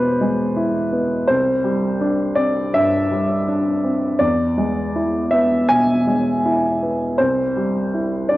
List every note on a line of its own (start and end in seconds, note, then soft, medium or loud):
0.00 1.31 E2 medium
0.00 0.42 B2 soft
0.00 0.21 G#3 soft
0.00 0.93 B3 soft
0.00 0.56 E4 soft
0.00 0.92 B4 medium
0.00 1.27 C5 medium
0.00 1.32 D5 medium
0.21 0.79 G#3 soft
0.56 1.15 E4 medium
0.93 1.29 B3 soft
1.27 2.71 C2 medium
1.27 2.38 C5 medium
1.64 2.23 G3 medium
2.01 2.60 D4 medium
2.35 2.96 C4 soft
2.35 2.74 D5 medium
2.74 3.34 G2 medium
2.74 4.21 E5 medium
3.11 3.70 G3 soft
3.48 4.07 D4 soft
3.84 4.21 C4 soft
4.19 5.65 E2 medium
4.19 5.31 D5 medium
4.58 5.17 G#3 soft
4.96 5.55 E4 medium
5.31 5.92 B3 soft
5.31 5.69 E5 medium
5.69 6.29 B2 medium
5.69 7.18 G#5 medium
6.07 6.66 G#3 soft
6.45 7.04 E4 medium
6.83 7.19 B3 soft
7.18 8.37 C2 medium
7.18 8.30 C5 medium
7.56 8.16 G3 soft
7.94 8.37 E4 soft
8.29 8.37 D4 soft
8.29 8.37 D5 medium